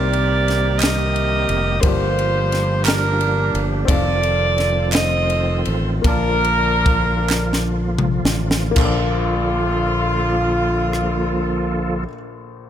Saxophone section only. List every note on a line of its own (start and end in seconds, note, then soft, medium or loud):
0.00 0.77 G4 medium
0.00 0.77 A#4 medium
0.00 0.75 D5 loud
0.78 1.80 G4 medium
0.78 1.79 A#4 medium
0.78 1.82 D#5 loud
1.81 2.83 F4 medium
1.81 2.85 C5 loud
2.84 3.85 D4 medium
2.84 3.85 F4 medium
2.84 3.62 A#4 medium
3.89 4.90 A4 medium
3.89 4.89 D5 loud
4.93 6.01 A4 medium
4.93 6.01 C5 medium
4.93 5.62 D#5 medium
6.06 7.72 D4 medium
6.06 7.73 F4 medium
6.06 7.72 A#4 loud
8.78 12.05 F4 medium